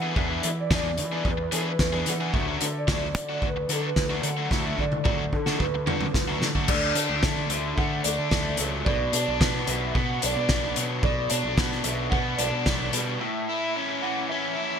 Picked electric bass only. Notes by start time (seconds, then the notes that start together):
Already playing: E3
0.16 E2
0.44 E3
0.70 E2
0.98 E3
1.25 E2
1.53 E3
1.80 E2
2.07 E3
2.34 D2
2.62 D3
2.87 D2
3.15 D3
3.42 D2
3.69 D3
3.97 D2
4.23 D3
4.50 D2
4.78 D3
5.05 D2
5.33 D3
5.59 D2
5.86 D3
6.14 D2
6.40 D3
6.68 D2
6.95 D3
7.09 D2
7.23 D3
7.49 D2
7.77 D3
8.05 D2
8.19 D3
8.31 D2
8.59 C#2
8.87 B1
9.13 B2
9.28 B1
9.41 B2
9.68 B1
9.95 B2
10.23 B1
10.36 B2
10.49 B1
10.77 B2
11.03 B1
11.31 B2
11.44 B1
11.58 B2
11.84 B1
12.12 B2
12.38 B1
12.51 B2
12.66 B1
12.93 B2